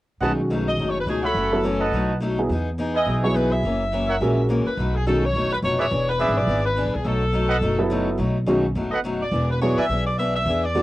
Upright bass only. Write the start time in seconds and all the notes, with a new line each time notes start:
0.21 B1
0.78 F#1
1.06 C#2
1.34 F#1
1.91 B1
2.49 E2
3.06 B1
3.63 F#1
4.20 A#1
4.66 muted upright bass stroke
4.77 B1
5.34 F#1
5.62 F1
5.91 E1
6.28 G#1
6.38 B1
6.47 G#1
6.86 B1
6.95 C2
7.05 B1
7.61 F#1
8.18 B1
8.75 F#1
9.31 E1
9.77 muted upright bass stroke
9.89 B1
10.45 E2